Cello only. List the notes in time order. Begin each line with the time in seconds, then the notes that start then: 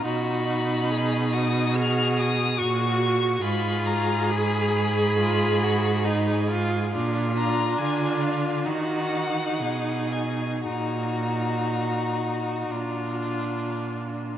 0.05 B2
2.60 A#2
3.42 G#2
6.94 A#2
7.80 D3
8.66 D#3
9.61 B2
10.65 A#2
12.72 A#2